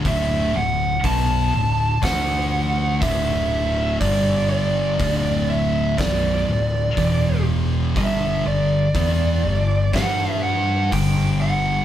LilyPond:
<<
  \new Staff \with { instrumentName = "Lead electric guitar" } { \time 4/4 \key d \major \tempo 4 = 61 e''8 fis''8 a''4 fis''4 e''4 | d''8 d''4 e''8 d''4. r8 | e''8 d''4. fis''8 fis''8 g''8 fis''8 | }
  \new Staff \with { instrumentName = "Distorted electric guitar" } { \clef bass \time 4/4 \key d \major <d, a, d>8 <d, a,>8 <b, fis b>8 <d, a,>8 <d a d'>4 <d, a, d>4 | <g, d g>4 <d, a, d>4 <b,, fis, b,>8 <d, a,>8 <e, b, e>4 | <g, d g>8 <g, d>8 <e b e'>8 <g, d>8 <g d' g'>4 <g, d g>4 | }
  \new Staff \with { instrumentName = "Distorted electric guitar" } { \clef bass \time 4/4 \key d \major <d, a, d>8 <d, a,>8 <b, fis b>8 <d, a,>8 <d a d'>4 <d, a, d>4 | <g, d g>4 <d, a, d>4 <b,, fis, b,>8 <d, a,>8 <e, b, e>4 | <g, d g>8 <g, d>8 <e b e'>8 <g, d>8 <g d' g'>4 <g, d g>4 | }
  \new Staff \with { instrumentName = "Picked electric bass" } { \clef bass \time 4/4 \key d \major d,,8 d,,8 b,,8 d,,8 d,4 d,,4 | g,,4 d,,4 b,,,8 d,,8 e,,4 | g,,8 g,,8 e,8 g,,8 g,4 g,,4 | }
  \new DrumStaff \with { instrumentName = "Drums" } \drummode { \time 4/4 <hho bd>4 <hho bd>4 <hho bd sn>4 <hho bd>4 | <hho bd>4 <hho bd>4 <hho bd sn>4 <hho bd>4 | <hho bd>4 <hho bd>4 <hho bd sn>4 <hho bd>4 | }
>>